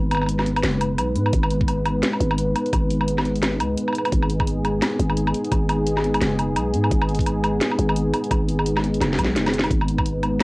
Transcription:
Already playing: 808-style bass G#1, analog synth pad G#3 B3 D#4 B4
0.11 open hi-hat, low woodblock
0.15 low woodblock
0.17 low woodblock
0.21 low woodblock
0.26 closed hi-hat, low woodblock
0.39 snare, low woodblock
0.46 closed hi-hat
0.56 open hi-hat, low woodblock
0.63 808-style bass F#1, snare, closed hi-hat
0.81 closed hi-hat, low woodblock
0.98 808-style bass B1, closed hi-hat, low woodblock
1.15 808-style bass G#2, closed hi-hat
1.26 low woodblock
1.33 808-style bass G#1, kick, closed hi-hat
1.43 low woodblock
1.50 open hi-hat
1.61 kick
1.68 closed hi-hat, low woodblock
1.85 closed hi-hat, low woodblock
2.03 snare, closed hi-hat
2.13 low woodblock
2.20 808-style bass G#1, closed hi-hat
2.31 low woodblock
2.38 closed hi-hat
2.56 open hi-hat, low woodblock
2.66 open hi-hat
2.73 808-style bass G#1, kick, closed hi-hat, low woodblock
2.90 open hi-hat
3.01 low woodblock
3.08 closed hi-hat
3.18 snare, low woodblock
3.25 closed hi-hat
3.36 open hi-hat
3.43 snare, closed hi-hat, low woodblock
3.60 808-style bass C#2, closed hi-hat, low woodblock
3.77 closed hi-hat
3.88 low woodblock
3.93 closed hi-hat, low woodblock
3.98 low woodblock
4.05 open hi-hat, low woodblock
4.12 808-style bass G#1, analog synth pad G#4, kick, closed hi-hat
4.23 low woodblock
4.30 open hi-hat
4.40 kick, low woodblock
4.47 closed hi-hat
4.65 closed hi-hat, low woodblock
4.82 snare, closed hi-hat, low woodblock
4.99 808-style bass G#1, closed hi-hat
5.10 low woodblock
5.17 closed hi-hat
5.27 low woodblock
5.34 open hi-hat
5.45 open hi-hat
5.52 808-style bass G#1, kick, closed hi-hat, low woodblock
5.69 open hi-hat, low woodblock
5.87 closed hi-hat
5.97 snare, low woodblock
6.04 closed hi-hat
6.14 open hi-hat, low woodblock
6.21 808-style bass F#1, snare, closed hi-hat
6.39 closed hi-hat, low woodblock
6.56 808-style bass B1, closed hi-hat, low woodblock
6.74 808-style bass G#2, closed hi-hat
6.84 low woodblock
6.91 808-style bass G#1, kick, closed hi-hat
7.02 low woodblock
7.09 open hi-hat
7.15 open hi-hat
7.19 kick, open hi-hat
7.26 closed hi-hat, low woodblock
7.44 closed hi-hat, low woodblock
7.61 snare, closed hi-hat
7.71 low woodblock
7.79 808-style bass G#1, closed hi-hat
7.89 low woodblock
7.96 closed hi-hat
8.14 open hi-hat, low woodblock
8.24 open hi-hat
8.31 808-style bass G#1, kick, closed hi-hat, low woodblock
8.49 open hi-hat
8.59 low woodblock
8.66 closed hi-hat
8.77 snare, low woodblock
8.84 closed hi-hat
8.94 open hi-hat
9.01 808-style bass F#1, snare, closed hi-hat, low woodblock
9.13 snare
9.18 808-style bass B1, kick, closed hi-hat, low woodblock
9.24 snare
9.36 808-style bass F#1, snare, closed hi-hat
9.46 snare, open hi-hat, low woodblock
9.54 closed hi-hat
9.59 snare
9.64 open hi-hat, low woodblock
9.71 808-style bass G#1, analog synth pad B4, kick, closed hi-hat
9.81 low woodblock
9.88 open hi-hat
9.98 kick, low woodblock
10.06 closed hi-hat
10.23 closed hi-hat, low woodblock

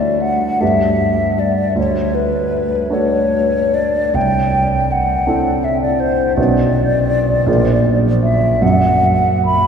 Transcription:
Already playing: grand piano D2 A3 D4 F#4 C#5, flute D5
0.22 flute F#5
0.60 grand piano G2 A3 D4 G4 B4, flute E5
1.40 flute D5
1.75 grand piano D2, flute C#5
2.15 flute B4
2.90 grand piano A3 D4 F#4 A4, flute C#5
3.74 flute D5
4.14 grand piano C2, flute G5
4.92 flute F#5
5.27 grand piano C4 D4 E4 A4
5.64 flute E5
5.82 flute D5
6.00 flute C5
6.37 grand piano B1 C#4 F#4 B4, flute D5
7.46 grand piano A#1 F4 G#4 A#4 C5
8.22 flute E5
8.62 grand piano F#2, flute F#5
9.45 flute B5

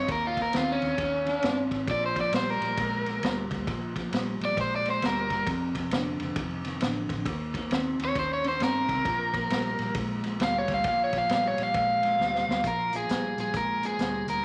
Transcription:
0.08 fingered electric bass D#2, clean electric guitar D#3 A#3, overdriven electric guitar A#4, kick, snare, ride
0.27 overdriven electric guitar F4
0.37 clean electric guitar D#3 A#3, kick, snare, ride
0.42 overdriven electric guitar A#4
0.53 fingered electric bass D#2, clean electric guitar D#3 C4, overdriven electric guitar F4, snare, ride
0.72 overdriven electric guitar C#4
0.82 fingered electric bass D#2, clean electric guitar D#3 C4, snare, ride
0.98 fingered electric bass D#2, clean electric guitar D#3 C#4, kick, snare, ride
1.26 clean electric guitar D#3 C#4, snare, ride
1.42 fingered electric bass G2, clean electric guitar D#3 C4, snare, ride
1.71 fingered electric bass G#1, clean electric guitar D#3 C4, kick, snare, ride
1.88 fingered electric bass A#1, clean electric guitar A#2 F3, overdriven electric guitar D5, kick, snare, ride
2.06 overdriven electric guitar C5
2.16 clean electric guitar A#2 F3, kick, snare, ride
2.21 overdriven electric guitar D5
2.32 fingered electric bass A#1, clean electric guitar A#2 G3, overdriven electric guitar C5, snare, ride
2.50 overdriven electric guitar A#4
2.61 fingered electric bass A#1, clean electric guitar A#2 G3, snare, ride
2.77 fingered electric bass A#1, clean electric guitar A#2 G#3, kick, snare, ride
3.06 clean electric guitar A#2 G#3, snare, ride
3.22 fingered electric bass D2, clean electric guitar A#2 G3, snare, ride
3.50 fingered electric bass D2, clean electric guitar A#2 G3, kick, snare, ride
3.67 fingered electric bass A#1, clean electric guitar A#2 F3, kick, snare, ride
3.95 clean electric guitar A#2 F3, kick, snare, ride
4.12 fingered electric bass A#1, clean electric guitar A#2 G3, snare, ride
4.40 fingered electric bass A#1, clean electric guitar A#2 G3, snare, ride
4.45 overdriven electric guitar D5
4.57 fingered electric bass A#1, clean electric guitar A#2 G#3, overdriven electric guitar C5, kick, snare, ride
4.76 overdriven electric guitar D5
4.85 clean electric guitar A#2 G#3, snare, ride
4.90 overdriven electric guitar C5
5.02 fingered electric bass D2, clean electric guitar A#2 G3, overdriven electric guitar A#4, snare, ride
5.30 fingered electric bass G1, clean electric guitar A#2 G3, kick, snare, ride
5.46 fingered electric bass F1, clean electric guitar F2 C3, kick, snare, ride
5.75 clean electric guitar F2 C3, kick, snare, ride
5.91 fingered electric bass F1, clean electric guitar F2 D3, snare, ride
6.19 fingered electric bass F1, clean electric guitar F2 D3, snare, ride
6.36 fingered electric bass F1, clean electric guitar F2 D#3, kick, snare, ride
6.64 clean electric guitar F2 D#3, snare, ride
6.80 fingered electric bass A1, clean electric guitar F2 D3, snare, ride
7.09 fingered electric bass A1, clean electric guitar F2 D3, kick, snare, ride
7.26 fingered electric bass D#2, clean electric guitar D#3 A#3, kick, snare, ride
7.54 clean electric guitar D#3 A#3, kick, snare, ride
7.71 fingered electric bass D#2, clean electric guitar D#3 C4, snare, ride
7.99 fingered electric bass D#2, clean electric guitar D#3 C4, snare, ride
8.05 overdriven electric guitar C#5
8.15 fingered electric bass D#2, clean electric guitar D#3 C#4, overdriven electric guitar C5, kick, snare, ride
8.33 overdriven electric guitar C#5
8.44 clean electric guitar D#3 C#4, snare, ride
8.48 overdriven electric guitar C5
8.60 fingered electric bass G2, clean electric guitar D#3 C4, overdriven electric guitar A#4, snare, ride
8.89 fingered electric bass C2, clean electric guitar D#3 C4, kick, snare, ride
9.04 fingered electric bass A#1, clean electric guitar A#2 F3, kick, snare, ride
9.33 clean electric guitar A#2 F3, kick, snare, ride
9.50 fingered electric bass A#1, clean electric guitar A#2 G3, snare, ride
9.78 fingered electric bass A#1, clean electric guitar A#2 G3, snare, ride
9.94 fingered electric bass A#1, clean electric guitar A#2 G#3, kick, snare, ride
10.23 clean electric guitar A#2 G#3, snare, ride
10.39 fingered electric bass D2, clean electric guitar A#2 G3, overdriven electric guitar F5, snare, ride
10.58 overdriven electric guitar C#5
10.68 fingered electric bass D2, clean electric guitar A#2 G3, kick, snare, ride
10.74 overdriven electric guitar F5
10.84 fingered electric bass A#1, clean electric guitar A#2 F3, kick, snare, ride
10.88 overdriven electric guitar F5
11.04 overdriven electric guitar C#5
11.13 clean electric guitar A#2 F3, kick, snare, ride
11.18 overdriven electric guitar F5
11.29 fingered electric bass A#1, clean electric guitar A#2 G3, snare, ride
11.34 overdriven electric guitar F5
11.47 overdriven electric guitar C#5
11.58 fingered electric bass A#1, clean electric guitar A#2 G3, snare, ride
11.63 overdriven electric guitar F5
11.74 fingered electric bass A#1, clean electric guitar A#2 G#3, overdriven electric guitar F5, kick, snare, ride
12.03 clean electric guitar A#2 G#3, snare, ride
12.19 fingered electric bass D2, clean electric guitar A#2 G3, snare
12.35 snare
12.48 fingered electric bass D2, clean electric guitar A#2 G3, snare
12.64 fingered electric bass A#1, clean electric guitar A#2 F3, overdriven electric guitar A#4, kick, snare, closed hi-hat
12.93 clean electric guitar A#2 F3, overdriven electric guitar G#4, snare, closed hi-hat
13.09 fingered electric bass A#1, clean electric guitar A#2 G3, snare, closed hi-hat
13.37 fingered electric bass A#1, clean electric guitar A#2 G3, overdriven electric guitar G#4, snare, closed hi-hat
13.53 fingered electric bass A#1, clean electric guitar A#2 G#3, overdriven electric guitar A#4, kick, snare, closed hi-hat
13.82 clean electric guitar A#2 G#3, overdriven electric guitar G#4, snare, closed hi-hat
13.98 fingered electric bass D2, clean electric guitar A#2 G3, snare, closed hi-hat
14.27 fingered electric bass D2, clean electric guitar A#2 G3, overdriven electric guitar A#4, snare, closed hi-hat

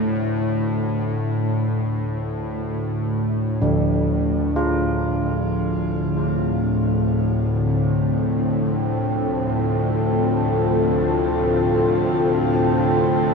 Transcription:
Already playing: synth drone D2 A2
3.62 church bells D3
4.55 synth drone D2 A2, ambient pad D3, church bells F4
5.38 ambient pad C4
6.37 ambient pad A4
7.67 ambient pad F4

